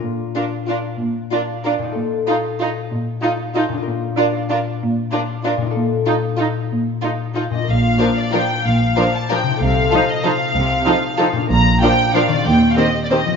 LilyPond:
<<
  \new Staff \with { instrumentName = "Violin section" } { \time 3/4 \key bes \major \tempo 4 = 188 r4 bes'4 bes'4 | r4 bes'4 bes'4 | r4 a'4 a'4 | r4 a'4 a'4 |
r4 bes'4 bes'4 | r4 bes'4 bes'4 | r4 a'4 a'4 | r4 a'4 a'8 ees''8 |
f''4. d''8 g''4 | f''4. a''8 g''4 | f''4. ees''8 f''4~ | f''2~ f''8 r8 |
bes''4 g''4 f''8 d''8 | g''8. f''16 ees''8. d''16 ees''8. r16 | }
  \new Staff \with { instrumentName = "Violin section" } { \time 3/4 \key bes \major r4 f'4 f'4 | r4 f'4 f'4 | r4 f'4 f'4 | r4 f'4 f'4 |
r4 f'4 f'4 | r4 f'4 f'4 | r4 f'4 f'4 | r4 f'4 f'4 |
r4 <f' bes'>4 <f' bes'>4 | r4 <f' bes'>4 <f' bes'>4 | r4 <f' a'>4 <f' a'>4 | r4 <f' a'>4 <f' a'>4 |
r4 <f' bes'>4 <f' bes'>4 | r4 <g' c''>4 <g' c''>4 | }
  \new Staff \with { instrumentName = "Harp" } { \time 3/4 \key bes \major <bes, d' f' bes'>2.~ | <bes, d' f' bes'>2. | <bes, ees' f' a'>2.~ | <bes, ees' f' a'>2. |
<bes, d' f' bes'>2.~ | <bes, d' f' bes'>2. | <bes, ees' f' a'>2.~ | <bes, ees' f' a'>2. |
<bes, d' f' bes'>2.~ | <bes, d' f' bes'>2. | <c ees' f' a'>2.~ | <c ees' f' a'>2. |
<bes, d' f' bes'>2. | <ees c' g' c''>2. | }
  \new Staff \with { instrumentName = "Viola section" } { \time 3/4 \key bes \major r4 d'4 d'4 | r4 d'4 d'4 | r4 ees'4 ees'4 | r4 ees'4 ees'4 |
r4 d'4 d'4 | r4 d'4 d'4 | r4 ees'4 ees'4 | r4 ees'4 ees'4 |
r4 <f d'>4 <f d'>4 | r4 <f d'>4 <f d'>4 | r4 <f ees'>4 <f ees'>4 | r4 <f ees'>4 <f ees'>4 |
r4 <f d'>4 <f d'>4 | r4 <ees c'>4 <ees c'>4 | }
  \new Staff \with { instrumentName = "Cello section" } { \clef bass \time 3/4 \key bes \major bes,4 r2 | bes,4 r2 | bes,4 r2 | bes,4 r2 |
bes,4 r2 | bes,4 r2 | bes,4 r2 | bes,4 r2 |
bes,4 r2 | bes,4 r2 | c4 r2 | c4 r2 |
bes,4 r2 | ees,4 r2 | }
  \new Staff \with { instrumentName = "Double bass section" } { \clef bass \time 3/4 \key bes \major r2. | r2. | r2. | r2. |
r2. | r2. | r2. | r2. |
bes,,4 r2 | bes,,4 r2 | c,4 r2 | c,4 r2 |
bes,,4 r2 | ees,4 r2 | }
>>